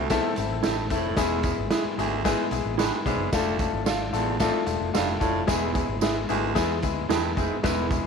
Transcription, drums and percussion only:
0.10 kick medium
0.10 snare medium
0.10 closed hi-hat medium
0.10 tambourine medium
0.36 closed hi-hat medium
0.36 tambourine soft
0.63 snare loud
0.63 closed hi-hat medium
0.63 tambourine medium
0.90 kick medium
0.90 snare soft
0.90 closed hi-hat medium
0.90 tambourine medium
1.17 kick medium
1.17 snare medium
1.17 closed hi-hat medium
1.17 tambourine loud
1.43 kick loud
1.43 closed hi-hat medium
1.43 tambourine medium
1.71 snare loud
1.71 closed hi-hat medium
1.71 tambourine loud
1.99 closed hi-hat medium
1.99 tambourine soft
2.25 kick medium
2.25 snare loud
2.25 closed hi-hat medium
2.25 tambourine medium
2.51 closed hi-hat medium
2.51 tambourine soft
2.79 snare medium
2.79 closed hi-hat medium
2.79 tambourine medium
3.06 kick medium
3.06 closed hi-hat medium
3.06 tambourine medium
3.33 kick loud
3.33 snare loud
3.33 closed hi-hat medium
3.33 tambourine loud
3.59 kick loud
3.59 closed hi-hat medium
3.59 tambourine soft
3.86 snare medium
3.86 closed hi-hat medium
3.86 tambourine loud
4.14 closed hi-hat medium
4.14 tambourine soft
4.40 kick medium
4.40 snare loud
4.40 closed hi-hat medium
4.40 tambourine medium
4.66 closed hi-hat medium
4.66 tambourine medium
4.95 snare loud
4.95 closed hi-hat medium
4.95 tambourine medium
5.21 kick medium
5.21 closed hi-hat medium
5.21 tambourine soft
5.48 kick medium
5.48 snare loud
5.48 closed hi-hat medium
5.48 tambourine loud
5.75 kick loud
5.75 closed hi-hat medium
5.75 tambourine soft
6.01 snare medium
6.01 closed hi-hat medium
6.01 tambourine loud
6.29 closed hi-hat medium
6.29 tambourine soft
6.56 kick medium
6.56 snare medium
6.56 closed hi-hat medium
6.56 tambourine medium
6.82 kick medium
6.82 closed hi-hat medium
6.82 tambourine soft
7.10 snare loud
7.10 closed hi-hat medium
7.10 tambourine medium
7.37 kick medium
7.37 closed hi-hat medium
7.37 tambourine medium
7.64 kick loud
7.64 snare loud
7.64 closed hi-hat medium
7.64 tambourine medium
7.91 kick loud
7.91 closed hi-hat medium
7.91 tambourine soft

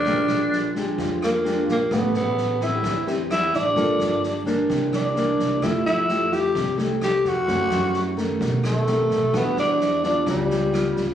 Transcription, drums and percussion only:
0.05 kick medium
0.05 snare soft
0.28 cross-stick medium
0.28 snare soft
0.52 snare soft
0.75 kick soft
0.75 snare soft
0.98 kick medium
0.98 snare soft
1.22 cross-stick medium
1.22 snare soft
1.45 snare soft
1.68 kick soft
1.68 snare soft
1.91 kick medium
1.91 cross-stick medium
1.91 snare soft
2.14 snare soft
2.38 snare soft
2.61 kick soft
2.61 snare soft
2.84 kick medium
2.84 cross-stick medium
2.84 snare soft
3.07 snare soft
3.31 cross-stick medium
3.31 snare soft
3.53 kick soft
3.53 snare soft
3.76 kick medium
3.76 snare soft
4.00 cross-stick soft
4.00 snare soft
4.23 snare soft
4.46 kick soft
4.46 snare soft
4.70 kick medium
4.70 snare soft
4.93 cross-stick medium
4.93 snare soft
5.16 snare soft
5.39 kick soft
5.39 snare soft
5.62 kick medium
5.62 cross-stick medium
5.62 snare soft
5.86 snare soft
6.08 snare soft
6.32 kick soft
6.32 snare soft
6.55 kick medium
6.55 cross-stick medium
6.55 snare soft
6.78 snare soft
7.01 cross-stick medium
7.01 snare soft
7.25 kick soft
7.25 snare soft
7.48 kick medium
7.48 snare soft
7.70 cross-stick medium
7.70 snare soft
7.94 snare soft
8.17 kick soft
8.17 snare soft
8.40 kick medium
8.40 snare soft
8.63 cross-stick medium
8.63 snare soft
8.87 snare soft
9.10 kick soft
9.10 snare soft
9.34 kick medium
9.34 cross-stick medium
9.34 snare soft
9.57 snare soft
9.80 snare soft
10.03 kick soft
10.03 snare soft
10.26 kick medium
10.26 cross-stick medium
10.26 snare soft
10.50 snare soft
10.74 cross-stick medium
10.74 snare soft
10.96 kick soft
10.96 snare soft

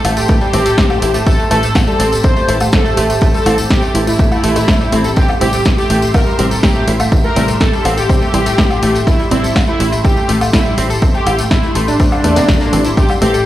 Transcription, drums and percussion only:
0.05 open hi-hat loud
0.05 low woodblock soft
0.17 tambourine medium
0.28 kick loud
0.28 tambourine medium
0.41 tambourine soft
0.53 open hi-hat loud
0.66 open hi-hat medium
0.66 tambourine medium
0.78 kick loud
0.78 snare loud
0.78 tambourine medium
0.90 tambourine soft
0.90 low woodblock medium
1.02 open hi-hat loud
1.14 tambourine medium
1.26 kick loud
1.26 tambourine medium
1.39 tambourine soft
1.51 open hi-hat loud
1.63 tambourine medium
1.75 kick loud
1.75 snare loud
1.75 tambourine medium
1.75 low woodblock soft
1.87 tambourine soft
2.00 open hi-hat loud
2.13 tambourine medium
2.24 kick loud
2.24 tambourine medium
2.37 tambourine soft
2.49 open hi-hat loud
2.60 tambourine medium
2.60 low woodblock medium
2.72 kick loud
2.72 snare loud
2.72 tambourine medium
2.85 tambourine soft
2.97 open hi-hat loud
3.10 tambourine medium
3.21 kick loud
3.21 tambourine medium
3.34 tambourine soft
3.46 open hi-hat loud
3.46 low woodblock soft
3.58 tambourine medium
3.70 kick loud
3.70 snare loud
3.70 tambourine medium
3.82 tambourine soft
3.95 open hi-hat loud
4.07 tambourine medium
4.19 kick loud
4.19 tambourine medium
4.32 tambourine soft
4.32 low woodblock medium
4.44 open hi-hat loud
4.56 open hi-hat medium
4.56 tambourine medium
4.68 kick loud
4.68 snare loud
4.68 tambourine medium
4.81 tambourine soft
4.92 open hi-hat loud
5.04 tambourine medium
5.16 kick loud
5.16 tambourine medium
5.28 tambourine soft
5.28 low woodblock medium
5.41 open hi-hat loud
5.53 tambourine medium
5.65 kick loud
5.65 snare loud
5.65 tambourine medium
5.78 tambourine soft
5.90 open hi-hat loud
6.02 tambourine medium
6.14 kick loud
6.14 tambourine medium
6.14 low woodblock medium
6.27 tambourine soft
6.39 open hi-hat loud
6.51 tambourine medium
6.63 kick loud
6.63 snare loud
6.75 tambourine soft
6.88 open hi-hat loud
7.00 tambourine medium
7.00 low woodblock medium
7.12 kick loud
7.12 tambourine medium
7.24 tambourine soft
7.36 open hi-hat loud
7.48 tambourine medium
7.60 kick loud
7.60 snare loud
7.60 tambourine medium
7.73 tambourine soft
7.85 open hi-hat loud
7.85 low woodblock medium
7.98 tambourine medium
8.09 kick loud
8.09 tambourine medium
8.22 tambourine soft
8.34 open hi-hat loud
8.46 open hi-hat medium
8.46 tambourine medium
8.58 kick loud
8.58 snare loud
8.58 tambourine medium
8.71 tambourine soft
8.71 low woodblock medium
8.83 open hi-hat loud
8.95 tambourine medium
9.07 kick loud
9.07 tambourine medium
9.19 tambourine soft
9.31 open hi-hat loud
9.44 tambourine medium
9.56 kick loud
9.56 snare loud
9.56 tambourine medium
9.56 low woodblock medium
9.67 tambourine soft
9.80 open hi-hat loud
9.93 tambourine medium
10.05 kick loud
10.05 tambourine medium
10.17 tambourine soft
10.29 open hi-hat loud
10.41 tambourine medium
10.41 low woodblock medium
10.53 kick loud
10.53 snare loud
10.53 tambourine medium
10.65 tambourine soft
10.78 open hi-hat loud
10.90 tambourine medium
11.02 kick loud
11.02 tambourine medium
11.15 tambourine soft
11.27 open hi-hat loud
11.27 low woodblock medium
11.39 tambourine medium
11.51 kick loud
11.51 snare loud
11.51 tambourine medium
11.63 tambourine soft
11.75 open hi-hat loud
11.88 tambourine medium
12.00 kick loud
12.00 tambourine medium
12.12 tambourine soft
12.12 low woodblock medium
12.24 open hi-hat loud
12.36 open hi-hat medium
12.36 tambourine medium
12.48 kick loud
12.48 snare loud
12.48 tambourine medium
12.61 tambourine soft
12.73 open hi-hat loud
12.84 tambourine medium
12.97 kick loud
12.97 tambourine medium
13.09 tambourine soft
13.09 low woodblock medium
13.22 open hi-hat loud
13.34 tambourine medium

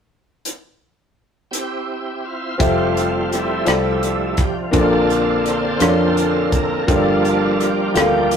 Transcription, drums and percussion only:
0.45 closed hi-hat soft
1.53 closed hi-hat soft
2.60 kick medium
2.60 closed hi-hat medium
2.97 closed hi-hat soft
3.32 cross-stick soft
3.32 closed hi-hat soft
3.66 cross-stick medium
3.66 closed hi-hat medium
4.03 closed hi-hat soft
4.37 kick medium
4.37 closed hi-hat soft
4.73 kick medium
4.73 closed hi-hat medium
5.10 closed hi-hat soft
5.46 cross-stick soft
5.46 closed hi-hat soft
5.80 cross-stick medium
5.80 closed hi-hat medium
6.17 closed hi-hat soft
6.52 kick medium
6.52 closed hi-hat soft
6.88 kick medium
6.88 closed hi-hat medium
7.25 closed hi-hat soft
7.60 cross-stick soft
7.60 closed hi-hat soft
7.96 cross-stick medium
7.96 closed hi-hat medium
8.31 closed hi-hat soft

